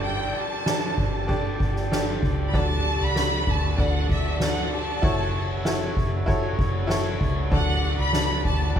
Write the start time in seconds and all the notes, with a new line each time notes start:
Already playing: G1 G2 D4 G4 A4 D5
0.04 G5, ride
0.20 ride
0.35 A5, ride
0.66 D4 G4 A4 D5, snare, ride
0.97 G1, kick, ride
1.27 D4 G4 A4 D5, kick, ride
1.60 G1, kick, ride
1.76 snare
1.91 D4 G4 A4 D5, snare, ride
2.23 C#2, kick, ride
2.47 B5
2.53 D2 F#3 D4 F#4 A4 D5 A5, kick, ride
2.70 ride
2.86 ride
3.01 C#2 B5
3.15 D4 F#4 A4 D5, snare, ride
3.47 D2 A5, kick, ride
3.77 D2 D4 F#4 A4 D5 F#5, kick, ride
4.09 E5, kick, ride
4.39 D4 F#4 A4 D5 F#5, snare, ride
4.71 A5, ride
5.02 F#1 E4 F#4 A4 C#5, kick, ride
5.19 ride
5.35 ride
5.65 E4 F#4 A4 C#5, snare, ride
5.97 F#1, kick, ride
6.26 E4 F#4 A4 C#5, kick, ride
6.59 F#1, kick, ride
6.87 E4 F#4 A4 C#5, snare, ride
7.20 C#2, kick, ride
7.51 D2 F#3 D4 F#4 A4 D5 F#5, kick, ride
7.68 ride
7.83 ride
7.99 C#2 B5
8.12 D4 F#4 A4 D5, snare, ride
8.45 D2 A5, kick, ride
8.75 D2 D4 F#4 A4, kick, ride